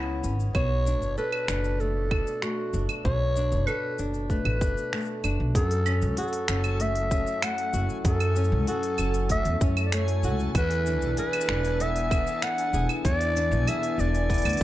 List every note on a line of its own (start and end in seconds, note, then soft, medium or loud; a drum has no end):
0.00 0.25 C#2 medium
0.00 0.55 C#3 medium
0.00 1.21 B3 medium
0.00 0.23 C#4 medium
0.00 0.36 E4 medium
0.00 0.62 G#4 medium
0.00 claves soft
0.23 0.48 G#1 medium
0.23 0.61 C#4 medium
0.23 cabasa medium
0.40 cabasa soft
0.55 1.02 B1 medium
0.55 3.05 B2 medium
0.55 1.14 C#5 loud
0.55 kick loud
0.55 cabasa soft
0.55 claves medium
0.86 1.48 D4 medium
0.86 cabasa medium
1.02 1.14 F#1 medium
1.02 cabasa soft
1.18 3.67 A4 medium
1.18 1.81 B4 medium
1.18 cabasa soft
1.32 claves medium
1.48 2.21 F#1 medium
1.48 2.10 D4 medium
1.48 finger snap medium
1.48 cabasa medium
1.65 cabasa soft
1.80 2.42 A3 medium
1.80 2.44 A4 loud
1.80 cabasa soft
2.11 2.73 D4 medium
2.11 kick medium
2.11 claves medium
2.27 cabasa soft
2.42 4.30 A3 medium
2.42 2.90 F#4 medium
2.42 finger snap medium
2.42 cabasa soft
2.74 2.86 F#1 medium
2.74 3.36 D4 medium
2.74 cabasa medium
2.89 cabasa soft
2.89 claves medium
3.05 3.54 B1 medium
3.05 5.56 B2 medium
3.05 3.68 C#5 loud
3.05 kick loud
3.05 cabasa soft
3.36 3.98 D4 medium
3.36 cabasa medium
3.52 3.64 F#1 loud
3.52 cabasa soft
3.67 6.18 A4 medium
3.67 4.03 B4 loud
3.67 cabasa soft
3.67 claves medium
3.99 4.41 F#1 medium
3.99 4.60 D4 medium
3.99 cabasa medium
4.14 cabasa soft
4.30 4.93 A3 medium
4.30 5.20 B4 medium
4.30 kick medium
4.30 cabasa soft
4.45 4.61 A1 loud
4.45 claves medium
4.61 4.74 F#1 medium
4.61 5.23 D4 medium
4.61 kick loud
4.61 cabasa medium
4.78 cabasa soft
4.93 6.79 A3 medium
4.93 finger snap medium
4.93 cabasa soft
4.95 cabasa soft
4.98 cabasa soft
5.00 cabasa soft
5.02 cabasa soft
5.04 cabasa soft
5.07 cabasa soft
5.24 5.36 F#1 medium
5.24 5.61 D4 medium
5.24 cabasa medium
5.24 claves medium
5.40 5.52 B1 medium
5.53 6.04 F#2 medium
5.53 8.04 F#2 medium
5.53 10.56 F#3 medium
5.53 14.63 A4 medium
5.53 6.14 A4 loud
5.53 14.63 G#5 medium
5.53 kick loud
5.53 open hi-hat medium
5.53 cabasa soft
5.71 open hi-hat soft
5.86 6.48 C#4 medium
5.86 cabasa medium
5.86 claves medium
6.02 6.14 C#2 medium
6.02 cabasa soft
6.17 7.73 F#4 medium
6.17 6.83 A4 medium
6.17 open hi-hat medium
6.17 cabasa soft
6.22 cabasa soft
6.28 cabasa soft
6.32 14.63 E4 medium
6.32 open hi-hat medium
6.46 7.22 F#1 medium
6.46 10.55 C#4 medium
6.46 7.10 C#4 medium
6.46 finger snap medium
6.46 cabasa medium
6.64 open hi-hat soft
6.64 cabasa soft
6.64 claves medium
6.80 7.42 A3 medium
6.80 7.45 E5 loud
6.80 open hi-hat medium
6.80 cabasa soft
6.95 open hi-hat soft
7.11 8.35 C#4 medium
7.11 kick loud
7.11 cabasa medium
7.27 cabasa soft
7.42 9.29 A3 medium
7.42 7.90 F#5 loud
7.42 finger snap medium
7.42 open hi-hat medium
7.42 cabasa soft
7.42 claves medium
7.58 open hi-hat soft
7.74 7.86 F#1 medium
7.74 8.67 F#4 medium
7.74 cabasa medium
7.80 10.55 A4 medium
7.90 cabasa soft
8.05 8.53 F#2 loud
8.05 10.55 F#2 medium
8.05 8.64 A4 loud
8.05 kick loud
8.05 open hi-hat medium
8.05 cabasa soft
8.20 open hi-hat soft
8.20 claves medium
8.36 8.98 C#4 medium
8.36 cabasa medium
8.44 cabasa soft
8.52 8.64 C#2 loud
8.67 10.23 F#4 medium
8.67 9.27 A4 loud
8.67 open hi-hat medium
8.67 cabasa soft
8.83 open hi-hat soft
8.98 9.40 F#1 medium
8.98 9.61 C#4 medium
8.98 cabasa medium
8.98 claves medium
9.14 open hi-hat soft
9.14 cabasa soft
9.29 9.92 A3 medium
9.29 9.64 E5 loud
9.29 kick medium
9.29 open hi-hat medium
9.29 cabasa soft
9.45 9.58 E2 medium
9.45 open hi-hat soft
9.61 10.25 F#2 medium
9.61 10.62 C#4 medium
9.61 kick loud
9.61 cabasa medium
9.77 cabasa soft
9.77 claves medium
9.86 9.96 D5 medium
9.92 10.62 A3 medium
9.92 10.40 C#5 medium
9.92 finger snap medium
9.92 open hi-hat medium
9.92 cabasa soft
10.08 open hi-hat soft
10.23 10.48 C#2 medium
10.23 10.62 F#4 medium
10.23 cabasa medium
10.40 cabasa soft
10.55 11.01 E2 loud
10.55 13.05 E3 medium
10.55 14.63 B3 medium
10.55 11.15 B4 loud
10.55 kick loud
10.55 open hi-hat medium
10.55 cabasa soft
10.55 claves medium
10.71 open hi-hat soft
10.86 11.48 D4 medium
10.86 14.63 D4 medium
10.86 cabasa medium
11.01 11.14 B1 loud
11.01 cabasa soft
11.17 12.74 G#4 medium
11.17 11.83 B4 loud
11.17 open hi-hat medium
11.17 cabasa soft
11.33 open hi-hat soft
11.33 claves medium
11.41 cabasa medium
11.48 12.21 E1 medium
11.48 12.11 D4 medium
11.48 finger snap medium
11.64 open hi-hat soft
11.64 cabasa soft
11.80 12.43 B3 medium
11.80 12.45 E5 loud
11.80 open hi-hat medium
11.80 cabasa soft
11.96 14.63 B4 medium
11.96 open hi-hat soft
12.11 13.35 D4 medium
12.11 kick loud
12.11 cabasa medium
12.11 claves medium
12.27 cabasa soft
12.42 14.30 B3 medium
12.42 12.90 F#5 loud
12.42 finger snap medium
12.42 open hi-hat medium
12.42 cabasa soft
12.58 open hi-hat soft
12.73 12.86 E1 medium
12.73 13.68 G#4 medium
12.73 cabasa medium
12.89 cabasa soft
12.89 claves medium
13.05 13.53 E2 loud
13.05 14.63 E3 medium
13.05 13.70 D5 loud
13.05 kick loud
13.05 open hi-hat medium
13.05 cabasa soft
13.21 open hi-hat soft
13.37 13.98 D4 medium
13.37 cabasa medium
13.52 13.64 B1 loud
13.52 cabasa soft
13.67 14.63 G#4 medium
13.67 14.01 E5 loud
13.67 open hi-hat medium
13.67 cabasa soft
13.67 claves medium
13.83 open hi-hat soft
13.98 14.40 E1 medium
13.98 14.60 D4 medium
13.98 14.63 D5 loud
13.98 cabasa medium
14.14 open hi-hat soft
14.14 cabasa soft
14.30 14.63 B3 medium
14.30 kick medium
14.30 open hi-hat soft
14.30 cabasa soft
14.34 open hi-hat soft
14.38 open hi-hat soft
14.42 open hi-hat soft
14.45 14.58 D2 loud
14.45 open hi-hat soft
14.45 claves medium
14.49 open hi-hat soft
14.53 open hi-hat soft
14.57 open hi-hat soft